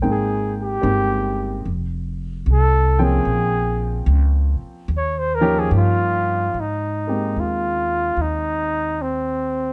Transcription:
X:1
M:4/4
L:1/16
Q:"Swing" 1/4=74
K:Ab
V:1 name="Flugelhorn"
A2 G6 z4 =A2 _A2- | A4 z4 d c B A F4 | E4 F4 E4 C4 |]
V:2 name="Grand piano"
[A,B,CEg]2 z2 [A,B,CEG]2 z8 [F,B,CDg]2- | [F,B,CDg]4 z6 [F,B,DEG]6 | z2 [A,B,CEG]12- [A,B,CEG]2 |]
V:3 name="Upright bass" clef=bass
A,,,4 G,,,4 F,,,4 C,,4 | B,,,4 D,,2 z2 E,,4 G,,4 | A,,4 E,,4 E,,8 |]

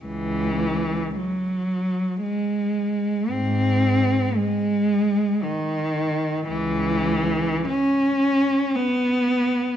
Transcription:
X:1
M:3/4
L:1/8
Q:1/4=56
K:C#m
V:1 name="Cello" clef=bass
[C,,E,]2 F,2 G,2 | [G,,^B,]2 G,2 D,2 | [C,,E,]2 C2 B,2 |]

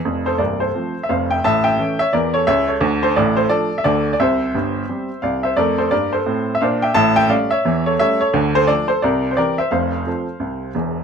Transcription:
X:1
M:4/4
L:1/16
Q:"Swing" 1/4=174
K:F
V:1 name="Upright piano"
z2 [Ac]2 [Bd]2 [Ac]4- [Ac] e [cf]2 [eg]2 | [ea]2 [eg]4 [^ce]2 [Bd]2 [Ac]2 [ce]2 [Ac]2 | z2 [Ac]2 [Ad]2 [Ac]2 [Ad]3 e [Ad]3 d | [ce]12 [df]2 [ce]2 |
[Bd]2 [Ac]2 [Bd]2 [Ac]4- [Ac] e [cf]2 [eg]2 | [ea]2 [eg]2 [df]2 [^ce]4 [Ac]2 [ce]2 [Ac]2 | z2 [Ac]2 [Ad]2 [Ac]2 [Bd]3 c [Bd]2 [ce]2 | [cf]12 z4 |]
V:2 name="Upright piano" clef=bass
[F,,,F,,]4 [C,,,C,,]4 [F,A,C]4 [F,,,F,,]4 | [A,,,A,,]4 [E,A,^C]4 [E,,E,]4 [^C,,^C,]4 | [D,,D,]4 [A,,,A,,]4 [F,A,D]4 [D,,D,]4 | [C,,C,]4 [G,,,G,,]4 [G,CG]4 [C,,C,]4 |
[F,,A,]4 [G,,B,]4 [A,,C]4 [B,,D]4 | [A,,,A,,]4 [G,A,^C]4 [E,,E,]4 [G,A,C]4 | [D,,D,]4 [F,A,D]4 [C,,C,]4 [E,CG]4 | [F,,,F,,]4 [F,CA]4 [C,,C,]4 [E,,,E,,]4 |]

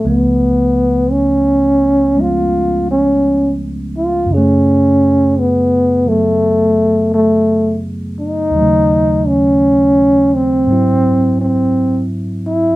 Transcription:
X:1
M:4/4
L:1/16
Q:"Swing" 1/4=56
K:C#phr
V:1 name="Trombone"
B,4 C4 ^E2 C3 z E2 | C4 B,2 A,4 A,3 z ^D2- | ^D2 C4 =C4 ^B,3 z E2 |]
V:2 name="Tine electric piano" clef=bass
[C,,C,^E,A,B,]8 [E,G,B,C]8 | [F,,C,E,A,G]6 [E,F,A,B,]8- [E,F,A,B,]2 | [^D,,C,^D,F,A,]8 [G,,E,F,^B,E]8 |]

